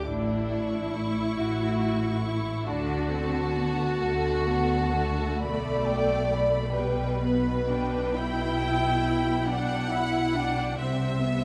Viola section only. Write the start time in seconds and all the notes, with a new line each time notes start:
0.06 E4
2.68 D4
3.10 C4
3.54 B3
3.99 A3
4.46 B3
4.93 A3
6.74 G3
7.21 B3
7.69 D4
8.15 E4
9.47 D4
9.91 E4
10.33 D4
10.77 C4
11.21 B3